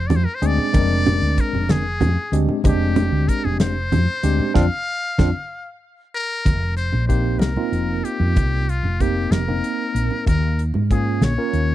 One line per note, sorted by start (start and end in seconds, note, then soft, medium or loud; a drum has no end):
0.00 0.11 F1 medium
0.07 0.25 F2 medium
0.07 0.17 D5 medium
0.07 closed hi-hat medium
0.07 low conga medium
0.16 0.26 C5 medium
0.25 0.36 A#4 medium
0.25 muted fretless electric bass stroke soft
0.35 0.48 C5 medium
0.42 0.57 D2 medium
0.42 0.70 G#3 medium
0.42 0.70 C4 medium
0.42 0.70 D4 medium
0.42 0.70 G#4 medium
0.42 closed hi-hat medium
0.46 1.42 D5 medium
0.58 muted fretless electric bass stroke soft
0.58 low conga medium
0.73 1.18 F1 loud
0.73 1.83 G#3 medium
0.73 1.84 C4 medium
0.73 1.84 D4 medium
0.73 1.84 A#4 medium
0.73 kick loud
0.73 closed hi-hat medium
0.73 high conga medium
1.06 closed hi-hat medium
1.06 low conga loud
1.22 1.36 D2 medium
1.38 1.73 A#4 medium
1.38 muted fretless electric bass stroke soft
1.38 kick medium
1.38 closed hi-hat medium
1.38 low conga soft
1.53 2.02 F1 medium
1.53 low conga medium
1.69 2.42 G#4 medium
1.69 snare medium
1.69 closed hi-hat medium
1.69 high conga loud
2.01 2.16 F2 medium
2.01 closed hi-hat medium
2.01 low conga loud
2.17 muted fretless electric bass stroke soft
2.32 2.47 D2 medium
2.32 2.60 G#3 medium
2.32 2.61 C4 medium
2.32 2.61 D4 medium
2.32 2.61 G4 medium
2.32 closed hi-hat medium
2.48 muted fretless electric bass stroke soft
2.48 low conga medium
2.64 3.09 F1 loud
2.64 3.75 G#3 medium
2.64 3.75 C4 medium
2.64 3.75 D4 medium
2.64 3.75 G4 medium
2.64 3.30 G4 medium
2.64 kick loud
2.64 closed hi-hat medium
2.64 high conga loud
2.96 closed hi-hat medium
2.96 low conga loud
3.11 3.26 D2 medium
3.28 3.46 A#4 medium
3.28 muted fretless electric bass stroke soft
3.28 kick medium
3.28 closed hi-hat medium
3.28 low conga soft
3.44 3.93 F1 medium
3.44 3.60 G#4 medium
3.44 low conga medium
3.60 4.52 C5 medium
3.60 snare medium
3.60 closed hi-hat medium
3.60 high conga medium
3.92 4.06 F2 medium
3.92 closed hi-hat medium
3.92 low conga medium
4.23 4.38 D2 medium
4.23 4.51 G#3 medium
4.23 4.51 C4 medium
4.23 4.51 D4 medium
4.23 4.51 G4 medium
4.23 closed hi-hat medium
4.39 muted fretless electric bass stroke soft
4.39 low conga medium
4.54 4.68 F2 medium
4.54 4.65 C4 loud
4.54 4.65 D4 loud
4.54 4.65 F4 loud
4.54 5.79 F5 medium
4.54 kick medium
4.54 snare medium
4.54 high conga medium
5.18 5.31 F2 medium
5.18 5.29 C4 medium
5.18 5.29 D4 medium
5.18 5.29 F4 medium
5.18 kick medium
5.18 snare medium
5.18 high conga loud
6.14 6.74 A#4 medium
6.45 6.90 F1 medium
6.45 kick medium
6.45 closed hi-hat medium
6.45 high conga medium
6.45 low conga soft
6.77 7.07 C5 medium
6.77 closed hi-hat medium
6.92 7.41 A#1 medium
6.92 low conga medium
7.08 7.50 A#3 medium
7.08 7.50 C4 medium
7.08 7.50 D#4 medium
7.08 7.50 G4 medium
7.08 7.41 C5 medium
7.08 kick medium
7.08 closed hi-hat soft
7.39 7.55 C2 medium
7.39 8.06 A#4 medium
7.39 snare medium
7.39 closed hi-hat medium
7.39 high conga medium
7.56 8.67 A#3 medium
7.56 8.67 C4 medium
7.56 8.67 D#4 medium
7.56 8.67 F4 medium
7.56 low conga medium
7.72 8.01 F1 medium
7.72 closed hi-hat medium
8.04 8.71 G4 medium
8.04 closed hi-hat medium
8.19 8.34 F2 medium
8.19 low conga medium
8.36 8.80 C2 medium
8.36 kick loud
8.36 closed hi-hat medium
8.36 high conga medium
8.36 low conga soft
8.69 9.03 F4 medium
8.69 closed hi-hat medium
8.83 9.27 F1 medium
8.83 low conga medium
9.00 9.41 A#3 medium
9.00 9.41 C4 medium
9.00 9.42 D#4 medium
9.00 9.33 G4 medium
9.00 9.42 G4 medium
9.00 kick medium
9.00 closed hi-hat soft
9.30 9.60 F1 medium
9.30 10.27 A#4 medium
9.30 snare medium
9.30 closed hi-hat medium
9.30 high conga medium
9.48 10.27 A#3 medium
9.48 10.27 C4 medium
9.48 10.28 D#4 medium
9.48 10.27 A#4 medium
9.48 low conga medium
9.64 closed hi-hat medium
9.94 10.09 A#1 medium
9.94 closed hi-hat medium
10.10 low conga medium
10.26 10.71 D#2 medium
10.26 10.61 A#4 medium
10.26 kick medium
10.26 closed hi-hat medium
10.26 high conga medium
10.26 low conga soft
10.59 closed hi-hat medium
10.74 11.22 G#2 medium
10.74 low conga medium
10.91 11.32 A#3 medium
10.91 11.32 C#4 medium
10.91 11.32 F4 medium
10.91 11.26 G#4 medium
10.91 11.32 G#4 medium
10.91 kick medium
10.91 closed hi-hat soft
11.21 11.36 A#1 medium
11.21 11.75 C#5 medium
11.21 snare medium
11.21 closed hi-hat medium
11.21 high conga medium
11.38 11.75 A#3 medium
11.38 11.75 C#4 medium
11.38 11.75 F4 medium
11.38 11.75 A#4 medium
11.53 11.75 D#2 medium
11.53 closed hi-hat medium